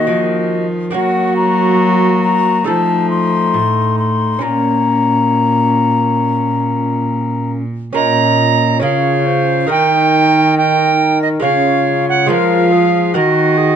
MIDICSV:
0, 0, Header, 1, 6, 480
1, 0, Start_track
1, 0, Key_signature, -5, "minor"
1, 0, Tempo, 867052
1, 520, Time_signature, 4, 2, 24, 8
1, 1963, Tempo, 879765
1, 4843, Tempo, 865801
1, 7578, End_track
2, 0, Start_track
2, 0, Title_t, "Recorder"
2, 0, Program_c, 0, 74
2, 0, Note_on_c, 0, 66, 59
2, 365, Note_off_c, 0, 66, 0
2, 520, Note_on_c, 0, 66, 65
2, 1476, Note_on_c, 0, 63, 64
2, 1484, Note_off_c, 0, 66, 0
2, 2439, Note_on_c, 0, 61, 61
2, 2447, Note_off_c, 0, 63, 0
2, 4188, Note_off_c, 0, 61, 0
2, 4364, Note_on_c, 0, 82, 96
2, 4819, Note_off_c, 0, 82, 0
2, 4844, Note_on_c, 0, 77, 82
2, 5316, Note_off_c, 0, 77, 0
2, 5331, Note_on_c, 0, 79, 90
2, 5800, Note_off_c, 0, 79, 0
2, 5812, Note_on_c, 0, 79, 87
2, 6162, Note_off_c, 0, 79, 0
2, 6173, Note_on_c, 0, 75, 77
2, 6206, Note_off_c, 0, 75, 0
2, 6282, Note_on_c, 0, 77, 88
2, 6635, Note_off_c, 0, 77, 0
2, 6652, Note_on_c, 0, 78, 83
2, 6765, Note_off_c, 0, 78, 0
2, 6771, Note_on_c, 0, 77, 87
2, 7236, Note_off_c, 0, 77, 0
2, 7247, Note_on_c, 0, 75, 95
2, 7578, Note_off_c, 0, 75, 0
2, 7578, End_track
3, 0, Start_track
3, 0, Title_t, "Flute"
3, 0, Program_c, 1, 73
3, 0, Note_on_c, 1, 75, 86
3, 369, Note_off_c, 1, 75, 0
3, 521, Note_on_c, 1, 78, 83
3, 743, Note_off_c, 1, 78, 0
3, 755, Note_on_c, 1, 82, 92
3, 1226, Note_off_c, 1, 82, 0
3, 1239, Note_on_c, 1, 82, 91
3, 1474, Note_off_c, 1, 82, 0
3, 1483, Note_on_c, 1, 81, 87
3, 1714, Note_off_c, 1, 81, 0
3, 1717, Note_on_c, 1, 84, 84
3, 2191, Note_off_c, 1, 84, 0
3, 2203, Note_on_c, 1, 84, 74
3, 2443, Note_on_c, 1, 82, 88
3, 2452, Note_off_c, 1, 84, 0
3, 4127, Note_off_c, 1, 82, 0
3, 4367, Note_on_c, 1, 75, 81
3, 4842, Note_on_c, 1, 73, 65
3, 4850, Note_off_c, 1, 75, 0
3, 5086, Note_on_c, 1, 72, 72
3, 5094, Note_off_c, 1, 73, 0
3, 5317, Note_off_c, 1, 72, 0
3, 5320, Note_on_c, 1, 70, 82
3, 6290, Note_on_c, 1, 73, 77
3, 6298, Note_off_c, 1, 70, 0
3, 6764, Note_on_c, 1, 70, 82
3, 6772, Note_off_c, 1, 73, 0
3, 7005, Note_on_c, 1, 68, 66
3, 7013, Note_off_c, 1, 70, 0
3, 7241, Note_on_c, 1, 66, 72
3, 7250, Note_off_c, 1, 68, 0
3, 7476, Note_on_c, 1, 68, 67
3, 7484, Note_off_c, 1, 66, 0
3, 7578, Note_off_c, 1, 68, 0
3, 7578, End_track
4, 0, Start_track
4, 0, Title_t, "Lute"
4, 0, Program_c, 2, 24
4, 0, Note_on_c, 2, 70, 47
4, 0, Note_on_c, 2, 78, 44
4, 39, Note_on_c, 2, 51, 49
4, 491, Note_off_c, 2, 78, 0
4, 494, Note_off_c, 2, 70, 0
4, 496, Note_off_c, 2, 51, 0
4, 501, Note_on_c, 2, 58, 48
4, 508, Note_on_c, 2, 66, 46
4, 516, Note_on_c, 2, 70, 45
4, 522, Note_on_c, 2, 54, 51
4, 1447, Note_off_c, 2, 58, 0
4, 1450, Note_off_c, 2, 66, 0
4, 1454, Note_off_c, 2, 70, 0
4, 1457, Note_off_c, 2, 54, 0
4, 1463, Note_on_c, 2, 63, 48
4, 1471, Note_on_c, 2, 69, 44
4, 1480, Note_on_c, 2, 53, 50
4, 1940, Note_off_c, 2, 53, 0
4, 1960, Note_on_c, 2, 45, 48
4, 2413, Note_off_c, 2, 63, 0
4, 2416, Note_off_c, 2, 69, 0
4, 2419, Note_off_c, 2, 45, 0
4, 2422, Note_on_c, 2, 61, 41
4, 2431, Note_on_c, 2, 70, 39
4, 2437, Note_on_c, 2, 46, 45
4, 4232, Note_off_c, 2, 46, 0
4, 4333, Note_off_c, 2, 61, 0
4, 4338, Note_off_c, 2, 70, 0
4, 4353, Note_on_c, 2, 61, 47
4, 4362, Note_on_c, 2, 70, 49
4, 4365, Note_on_c, 2, 46, 55
4, 4820, Note_off_c, 2, 46, 0
4, 4821, Note_off_c, 2, 61, 0
4, 4826, Note_off_c, 2, 70, 0
4, 4828, Note_on_c, 2, 61, 49
4, 4838, Note_on_c, 2, 70, 48
4, 4844, Note_on_c, 2, 49, 55
4, 5302, Note_off_c, 2, 61, 0
4, 5303, Note_off_c, 2, 49, 0
4, 5308, Note_off_c, 2, 70, 0
4, 5309, Note_on_c, 2, 63, 48
4, 5316, Note_on_c, 2, 70, 52
4, 5324, Note_on_c, 2, 51, 53
4, 6256, Note_off_c, 2, 63, 0
4, 6259, Note_off_c, 2, 70, 0
4, 6263, Note_off_c, 2, 51, 0
4, 6269, Note_on_c, 2, 56, 50
4, 6277, Note_on_c, 2, 65, 49
4, 6283, Note_on_c, 2, 73, 49
4, 6292, Note_on_c, 2, 49, 53
4, 6741, Note_off_c, 2, 56, 0
4, 6744, Note_off_c, 2, 49, 0
4, 6745, Note_off_c, 2, 65, 0
4, 6748, Note_off_c, 2, 73, 0
4, 6750, Note_on_c, 2, 56, 51
4, 6755, Note_on_c, 2, 65, 50
4, 6762, Note_on_c, 2, 73, 52
4, 6769, Note_on_c, 2, 53, 55
4, 7220, Note_off_c, 2, 56, 0
4, 7222, Note_off_c, 2, 53, 0
4, 7223, Note_off_c, 2, 65, 0
4, 7227, Note_off_c, 2, 73, 0
4, 7235, Note_on_c, 2, 78, 51
4, 7240, Note_on_c, 2, 70, 52
4, 7246, Note_on_c, 2, 51, 58
4, 7578, Note_off_c, 2, 51, 0
4, 7578, Note_off_c, 2, 70, 0
4, 7578, Note_off_c, 2, 78, 0
4, 7578, End_track
5, 0, Start_track
5, 0, Title_t, "Trombone"
5, 0, Program_c, 3, 57
5, 0, Note_on_c, 3, 58, 61
5, 365, Note_off_c, 3, 58, 0
5, 519, Note_on_c, 3, 58, 65
5, 1455, Note_off_c, 3, 58, 0
5, 1478, Note_on_c, 3, 57, 67
5, 2423, Note_off_c, 3, 57, 0
5, 2438, Note_on_c, 3, 58, 55
5, 4166, Note_off_c, 3, 58, 0
5, 4368, Note_on_c, 3, 61, 64
5, 4822, Note_off_c, 3, 61, 0
5, 4844, Note_on_c, 3, 65, 64
5, 5316, Note_off_c, 3, 65, 0
5, 5326, Note_on_c, 3, 63, 67
5, 6267, Note_off_c, 3, 63, 0
5, 6285, Note_on_c, 3, 65, 66
5, 7243, Note_on_c, 3, 66, 72
5, 7252, Note_off_c, 3, 65, 0
5, 7578, Note_off_c, 3, 66, 0
5, 7578, End_track
6, 0, Start_track
6, 0, Title_t, "Cello"
6, 0, Program_c, 4, 42
6, 40, Note_on_c, 4, 53, 56
6, 519, Note_on_c, 4, 54, 66
6, 528, Note_off_c, 4, 53, 0
6, 1473, Note_off_c, 4, 54, 0
6, 1477, Note_on_c, 4, 53, 65
6, 1961, Note_on_c, 4, 45, 57
6, 1969, Note_off_c, 4, 53, 0
6, 2437, Note_off_c, 4, 45, 0
6, 2441, Note_on_c, 4, 46, 55
6, 4233, Note_off_c, 4, 46, 0
6, 4361, Note_on_c, 4, 46, 61
6, 4842, Note_on_c, 4, 49, 69
6, 4850, Note_off_c, 4, 46, 0
6, 5324, Note_on_c, 4, 51, 68
6, 5332, Note_off_c, 4, 49, 0
6, 6284, Note_off_c, 4, 51, 0
6, 6287, Note_on_c, 4, 49, 65
6, 6760, Note_on_c, 4, 53, 68
6, 6768, Note_off_c, 4, 49, 0
6, 7240, Note_on_c, 4, 51, 72
6, 7249, Note_off_c, 4, 53, 0
6, 7578, Note_off_c, 4, 51, 0
6, 7578, End_track
0, 0, End_of_file